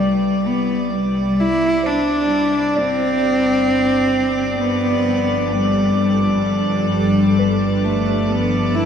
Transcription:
Already playing: double bass section C2, ambient pad C3 G3 E4 G4 D5, cello G3, synth bell B4, synth texture D5 D6
0.47 cello B3
0.94 cello G3
1.40 cello E4
1.83 cello D4, synth bell C5
2.75 double bass section G1, ambient pad G3, cello C4, synth bell D5
2.99 ambient pad D4
4.16 ambient pad F3
4.58 cello B3, ambient pad A4
5.53 cello G3
6.46 cello G3
7.39 synth bell B4
7.84 cello A3
8.29 cello B3
8.75 cello E4

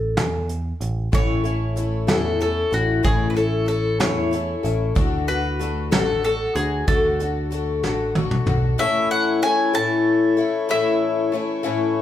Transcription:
Already playing: picked electric bass A1, mandolin A4
0.17 picked electric bass E2, snare, closed hi-hat
0.49 closed hi-hat
0.81 picked electric bass A1, closed hi-hat
1.12 picked electric bass A1, twelve-string acoustic guitar A2 E3 A3 C#4 E4 A4, mandolin C#5, kick, closed hi-hat
1.44 twelve-string acoustic guitar A3 C#4 E4 A4, closed hi-hat
1.76 twelve-string acoustic guitar A3 C#4 E4 A4, closed hi-hat
2.07 picked electric bass E2, twelve-string acoustic guitar A2 E3 A3 C#4 E4 A4, mandolin A4, snare, closed hi-hat
2.39 twelve-string acoustic guitar A3 C#4 E4 A4, mandolin A4, closed hi-hat
2.71 picked electric bass A1, twelve-string acoustic guitar A3 C#4 E4 A4, mandolin F#4, closed hi-hat
3.03 picked electric bass A1, twelve-string acoustic guitar A2 E3 A3 C#4 E4 A4, mandolin G#4, kick, closed hi-hat
3.30 mandolin B4
3.34 twelve-string acoustic guitar A3 C#4 E4 A4, mandolin A4, closed hi-hat
3.66 twelve-string acoustic guitar A3 C#4 E4 A4, mandolin A4, closed hi-hat
4.00 picked electric bass E2, twelve-string acoustic guitar A2 E3 A3 C#4 E4 A4, mandolin C#5, snare, closed hi-hat
4.31 twelve-string acoustic guitar A3 C#4 E4 A4, closed hi-hat
4.63 picked electric bass A1, twelve-string acoustic guitar A3 C#4 E4 A4, closed hi-hat
4.95 picked electric bass D2, twelve-string acoustic guitar D3 A3 D4 F#4 A4, kick, closed hi-hat
5.27 twelve-string acoustic guitar D4 F#4 A4, mandolin B4, closed hi-hat
5.59 twelve-string acoustic guitar A3 D4 F#4 A4, closed hi-hat
5.91 picked electric bass A1, twelve-string acoustic guitar D3 A3 D4 F#4 A4, mandolin A4, snare, closed hi-hat
6.23 twelve-string acoustic guitar A3 D4 F#4 A4, mandolin A4, closed hi-hat
6.55 picked electric bass D2, twelve-string acoustic guitar D4 F#4, mandolin G#4, closed hi-hat
6.87 picked electric bass D2, twelve-string acoustic guitar D3 A3 D4 F#4 A4, mandolin A4, kick, closed hi-hat
7.19 twelve-string acoustic guitar D4 F#4 A4, closed hi-hat
7.51 twelve-string acoustic guitar A3 D4 F#4 A4, closed hi-hat
7.83 picked electric bass A1, twelve-string acoustic guitar D3 A3 D4 F#4 A4, snare
8.15 twelve-string acoustic guitar A3 D4 F#4 A4, high tom
8.31 mid tom
8.46 picked electric bass B1, twelve-string acoustic guitar D4 F#4 A4, mid tom
8.78 twelve-string acoustic guitar A2 E3 A3 C#4 E4 A4, harmonium A3 E4 C#5, mandolin E5
9.11 mandolin F#5
9.42 twelve-string acoustic guitar A3 C#4 E4 A4, mandolin G#5
9.73 twelve-string acoustic guitar A2 E3 A3 C#4 E4 A4, mandolin A5
10.37 twelve-string acoustic guitar A3 C#4 E4 A4
10.69 twelve-string acoustic guitar A2 E3 A3 C#4 E4 A4, mandolin E5
11.32 twelve-string acoustic guitar A3 C#4 E4 A4
11.63 twelve-string acoustic guitar A2 E3 A3 C#4 E4 A4

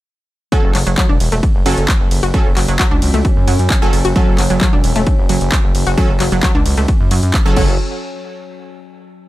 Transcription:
0.52 synth arpeggio sound F#3, supersaw synth F#3 C#4 A4, synth drone F#3 C#4, kick, closed hi-hat
0.64 analog synth bass F#1
0.75 analog synth bass F#1, synth arpeggio sound F#3, clap, open hi-hat, ride
0.87 analog synth bass F#1, synth arpeggio sound F#3, closed hi-hat
0.98 synth arpeggio sound F#3, kick, clap, closed hi-hat
1.09 analog synth bass E1, synth arpeggio sound D4
1.20 analog synth bass E1, open hi-hat, ride
1.32 analog synth bass E1, synth arpeggio sound A3, closed hi-hat
1.43 kick, closed hi-hat
1.55 analog synth bass F#1
1.66 analog synth bass F#1, synth arpeggio sound F#3, supersaw synth F#3 C#4 A4, open hi-hat, ride
1.77 analog synth bass F#1, closed hi-hat
1.88 kick, clap, closed hi-hat
2.00 analog synth bass F#1
2.11 analog synth bass F#1, open hi-hat, ride
2.23 analog synth bass F#1, synth arpeggio sound F#4, closed hi-hat
2.34 synth arpeggio sound F#3, supersaw synth F#3 C#4 A4, kick, closed hi-hat
2.46 analog synth bass F#1
2.57 analog synth bass F#1, synth arpeggio sound F#3, clap, open hi-hat, ride
2.68 analog synth bass F#1, synth arpeggio sound F#3, closed hi-hat
2.79 synth arpeggio sound F#3, kick, clap, closed hi-hat
2.91 analog synth bass C#2, synth arpeggio sound D4
3.02 analog synth bass C#2, open hi-hat, ride
3.14 analog synth bass C#2, synth arpeggio sound A3, closed hi-hat
3.25 kick, closed hi-hat
3.37 analog synth bass F#2
3.47 analog synth bass F#2, synth arpeggio sound F#3, open hi-hat, ride
3.59 analog synth bass F#2, closed hi-hat
3.70 kick, clap, closed hi-hat
3.82 analog synth bass F#1, supersaw synth F#3 C#4 A4
3.93 analog synth bass F#1, open hi-hat, ride
4.05 analog synth bass F#1, synth arpeggio sound F#4, closed hi-hat
4.16 synth arpeggio sound F#3, supersaw synth F#3 C#4 A4, kick, closed hi-hat
4.28 analog synth bass F#1
4.38 analog synth bass F#1, synth arpeggio sound F#3, clap, open hi-hat, ride
4.50 analog synth bass F#1, synth arpeggio sound F#3, closed hi-hat
4.61 synth arpeggio sound F#3, kick, clap, closed hi-hat
4.73 analog synth bass E1, synth arpeggio sound D4
4.84 analog synth bass E1, open hi-hat, ride
4.96 analog synth bass E1, synth arpeggio sound A3, closed hi-hat
5.07 kick, closed hi-hat
5.18 analog synth bass F#1
5.29 analog synth bass F#1, synth arpeggio sound F#3, open hi-hat, ride
5.41 analog synth bass F#1, closed hi-hat
5.52 kick, clap, closed hi-hat
5.64 analog synth bass F#1
5.75 analog synth bass F#1, open hi-hat, ride
5.86 analog synth bass F#1, synth arpeggio sound F#4, closed hi-hat
5.98 synth arpeggio sound F#3, supersaw synth F#3 C#4 A4, kick, closed hi-hat
6.09 analog synth bass F#1
6.20 analog synth bass F#1, synth arpeggio sound F#3, clap, open hi-hat, ride
6.32 analog synth bass F#1, synth arpeggio sound F#3, closed hi-hat
6.43 synth arpeggio sound F#3, kick, clap, closed hi-hat
6.55 analog synth bass C#2, synth arpeggio sound D4
6.65 analog synth bass C#2, open hi-hat, ride
6.77 analog synth bass C#2, synth arpeggio sound A3, closed hi-hat
6.88 kick, closed hi-hat
7.00 analog synth bass F#2
7.11 analog synth bass F#2, synth arpeggio sound F#3, open hi-hat, ride
7.23 analog synth bass F#2, closed hi-hat
7.34 kick, clap, closed hi-hat
7.46 analog synth bass F#1, supersaw synth F#3 C#4 A4
7.57 analog synth bass F#1, supersaw synth F#3 C#4 A4, synth arpeggio sound F#3, kick, crash

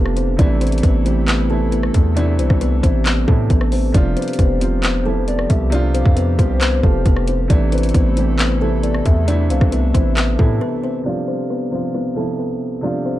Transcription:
Already playing: 808-style bass F1, grand piano C3 F3 G3 F4 G4, analog synth pad F3 D4 G4, kalimba B3 B4
0.06 cross-stick
0.17 kalimba C4 C5, closed hi-hat
0.37 808-style bass A1, grand piano C3 E3 A3, analog synth pad A3 E4 A4, kalimba D4 D5, kick, closed hi-hat
0.41 grand piano E4
0.61 kalimba C4 C5, closed hi-hat
0.67 closed hi-hat
0.72 closed hi-hat
0.78 closed hi-hat
0.83 808-style bass A1, kalimba B3 B4, kick, closed hi-hat
1.03 grand piano C3 E3 A3, kalimba C4 C5, closed hi-hat
1.08 grand piano G4
1.28 kalimba B3 B4, clap, closed hi-hat
1.48 grand piano C3 E3 A3, kalimba A4 A5
1.52 grand piano E4
1.72 kalimba B3 B4, closed hi-hat
1.83 cross-stick
1.94 808-style bass E2, kick, closed hi-hat
2.15 grand piano C3 E3 A3, analog synth pad D4, kalimba D4 D5, closed hi-hat
2.19 grand piano E4
2.39 808-style bass C2, kalimba C4 C5, closed hi-hat
2.50 808-style bass C2, kick, cross-stick
2.61 kalimba B3 B4, closed hi-hat
2.81 808-style bass A1, grand piano C3 E3 A3, kalimba C4 C5, kick, closed hi-hat
2.86 grand piano E4
3.06 kalimba B3 B4, clap, closed hi-hat
3.26 808-style bass A2, grand piano C3 E3 A3, kalimba A4 A5, kick
3.30 grand piano E4
3.50 808-style bass A1, kalimba B3 B4, kick, closed hi-hat
3.61 cross-stick
3.72 kalimba C4 C5, open hi-hat
3.92 808-style bass F1, grand piano C3 F3 G3, analog synth pad C3 F3 G4, kalimba D4 D5, kick, closed hi-hat
3.97 grand piano F4
4.17 kalimba C4 C5, soft synth lead B4, closed hi-hat
4.22 closed hi-hat
4.28 closed hi-hat
4.33 closed hi-hat
4.39 808-style bass F1, kalimba B3 B4, soft synth lead C5, kick, closed hi-hat
4.59 grand piano C3 F3 G3, kalimba C4 C5, closed hi-hat
4.63 grand piano F4
4.83 kalimba B3 B4, clap, closed hi-hat
5.03 grand piano C3 F3 G3, kalimba A4 A5
5.08 grand piano E4
5.28 kalimba B3 B4, soft synth lead D5, closed hi-hat
5.39 cross-stick
5.50 808-style bass C2, soft synth lead E5, kick, closed hi-hat
5.70 grand piano C3 F3 G3, kalimba D4 D5, closed hi-hat
5.74 grand piano F4
5.94 kalimba C4 C5, soft synth lead F5, closed hi-hat
6.05 808-style bass F2, kick
6.16 kalimba B3 B4, soft synth lead C5, closed hi-hat
6.37 808-style bass C2, grand piano C3 F3 G3, kalimba C4 C5, kick, closed hi-hat
6.41 grand piano G4
6.61 kalimba B3 B4, clap, closed hi-hat
6.81 808-style bass F1, grand piano C3 F3 G3, kalimba A4 A5, kick
6.86 grand piano F4
7.06 808-style bass F1, kalimba B3 B4, kick, closed hi-hat
7.17 cross-stick
7.27 kalimba C4 C5, closed hi-hat
7.48 808-style bass A1, grand piano C3 E3 A3, analog synth pad A3 E4 A4, kalimba D4 D5, kick, closed hi-hat
7.53 grand piano E4
7.72 kalimba C4 C5, soft synth lead B4, closed hi-hat
7.78 closed hi-hat
7.83 closed hi-hat
7.89 closed hi-hat
7.94 808-style bass A1, kalimba B3 B4, kick, closed hi-hat
8.14 grand piano C3 E3 A3, kalimba C4 C5, closed hi-hat
8.19 grand piano G4
8.39 kalimba B3 B4, clap, closed hi-hat
8.59 grand piano C3 E3 A3, kalimba A4 A5
8.64 grand piano E4
8.83 kalimba B3 B4, soft synth lead D5, closed hi-hat
8.94 cross-stick
9.05 808-style bass E2, soft synth lead E5, kick, closed hi-hat
9.26 grand piano C3 E3 A3, analog synth pad D4, kalimba D4 D5, closed hi-hat
9.30 grand piano E4
9.50 808-style bass C2, kalimba C4 C5, soft synth lead F5, closed hi-hat
9.61 808-style bass C2, kick, cross-stick
9.72 kalimba B3 B4, soft synth lead E5, closed hi-hat
9.92 808-style bass A1, grand piano C3 E3 A3, kalimba C4 C5, kick, closed hi-hat
9.97 grand piano E4
10.17 kalimba B3 B4, clap, closed hi-hat
10.37 808-style bass A2, grand piano C3 E3 A3, kalimba A4 A5, kick
10.41 grand piano E4
10.61 kalimba B3 B4
10.84 kalimba C4 C5
11.03 grand piano C3 F3 G3, kalimba D4 D5
11.08 grand piano F4
11.28 kalimba C4 C5
11.50 kalimba B3 B4
11.70 grand piano C3 F3 G3, kalimba C4 C5
11.75 grand piano F4
11.94 kalimba B3 B4
12.14 grand piano C3 F3 G3, kalimba A4 A5
12.19 grand piano E4
12.39 kalimba B3 B4
12.81 grand piano C3 F3 G3, kalimba D4 D5
12.86 grand piano F4
13.06 kalimba C4 C5

